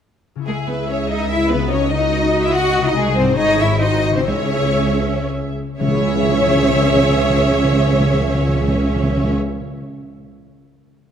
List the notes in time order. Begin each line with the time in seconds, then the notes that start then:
0.35 C#3 C#4 E4
0.42 G#4 E5
0.46 C#2 G#3 G#4
0.67 B3 B4
0.89 C#4 C#5
1.09 D#4 D#5
1.30 E4 E5
1.50 C#3 B3 B4
1.58 D#4
1.62 F#4
1.67 A4
1.71 C#4 F#4 C#5 D#5
1.91 D#4 D#5
2.43 E4 E5
2.54 F#4 F#5
2.77 C3
2.82 D#4 D#5
2.86 D#4 F#4 D#5
2.91 G#4
2.96 C2 G#3 G#4
3.17 G#2 C4 C5
3.24 C#4
3.28 E4
3.33 G#4
3.37 G#1 D#4 G#4 C#5 D#5
3.60 G#2 E4 E5
3.67 C4
3.71 F#4
3.76 G#4
3.81 D#4 F#4 C5 D#5
4.10 C#3
4.14 C4 C#4 C5
4.19 E4
4.23 G#4
4.28 C#2 C#3 C#4 G#4 C#5 E5
5.79 C#2 C#3 C#4 G#4 C#5 E5
5.87 C#3 C#4
5.94 C#3 E4
6.00 C#3 G#4
6.08 C#3 E5
6.15 C#3
6.22 C#3
6.29 C#3
6.35 C#3
6.41 C#3
6.48 C#3
6.55 C#3
6.62 C#3
6.69 C#3
6.76 C#3
6.82 C#3
6.89 C#3
6.96 C#3
7.03 C#3
7.10 C#3
7.17 C#3
7.24 C#3
7.30 C#3
7.37 C#3
7.44 C#3
7.51 C#3
7.58 C#3
7.65 C#3
7.72 C#3
7.79 C#3
7.86 C#3
7.93 C#3
8.00 C#3
8.07 C#3
8.14 C#3
8.20 C#3
8.27 C#3
8.34 C#3
8.41 C#3
8.49 C#3
8.55 C#3
8.61 C#3
8.68 C#3
8.75 C#3
8.82 C#3
8.89 C#3
8.96 C#3
9.03 C#3
9.10 C#3
9.17 C#3
9.24 C#3
9.31 C#3